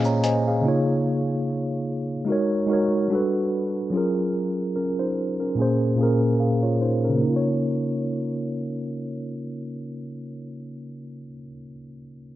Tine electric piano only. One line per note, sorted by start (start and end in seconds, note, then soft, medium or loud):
0.00 0.66 A#2 medium
0.00 0.63 A#3 medium
0.00 0.67 C#4 medium
0.00 0.67 F4 medium
0.00 0.48 G#4 medium
0.00 0.24 C5 loud
0.00 0.06 C#5 medium
0.00 0.23 D#5 medium
0.00 0.48 F5 medium
0.00 0.20 G#5 medium
0.06 0.23 C#5 medium
0.06 0.23 A#5 medium
0.23 0.45 C5 medium
0.23 0.61 D#5 medium
0.23 0.45 G#5 medium
0.48 0.86 G#4 medium
0.48 0.86 F5 medium
0.61 1.98 C#3 medium
0.61 1.99 A#3 medium
0.61 2.00 D#4 medium
0.67 2.01 F4 medium
0.67 2.02 C#5 medium
2.25 2.61 G#3 medium
2.25 2.62 D#4 medium
2.25 2.63 F#4 medium
2.30 2.64 A#4 medium
2.30 2.65 C#5 medium
2.66 3.09 G#3 medium
2.66 3.10 D#4 medium
2.66 3.10 F#4 medium
2.71 3.11 A#4 medium
2.71 3.12 C#5 medium
3.08 3.78 G3 medium
3.08 3.79 D4 medium
3.08 3.80 F#4 medium
3.13 3.81 A4 medium
3.13 3.82 B4 medium
3.90 5.27 F#3 medium
3.90 4.75 C#4 medium
3.90 4.75 F4 medium
3.96 4.76 G#4 medium
3.96 4.74 A#4 medium
4.76 4.97 C#4 soft
4.76 4.97 A#4 medium
4.99 5.38 D#4 medium
4.99 5.38 C5 medium
5.40 5.57 C#4 medium
5.40 5.79 A#4 medium
5.55 5.91 A#2 medium
5.55 5.91 A#3 medium
5.55 5.92 C#4 medium
5.60 5.93 G#4 medium
5.60 5.94 C5 medium
5.96 7.00 A#2 medium
5.96 7.01 A#3 medium
5.96 6.40 C#4 medium
6.01 6.40 G#4 medium
6.01 6.42 A#4 medium
6.40 6.62 G#4 soft
6.40 6.61 F5 medium
6.63 6.80 F4 medium
6.63 6.80 C#5 medium
6.82 7.03 D#4 medium
6.82 7.03 C5 medium
7.04 7.43 C#4 soft
7.04 7.43 A#4 medium
7.09 11.21 C#3 medium
7.15 11.28 A#3 medium
7.23 11.35 D#4 medium
7.29 11.42 F4 medium
7.36 11.49 C#5 medium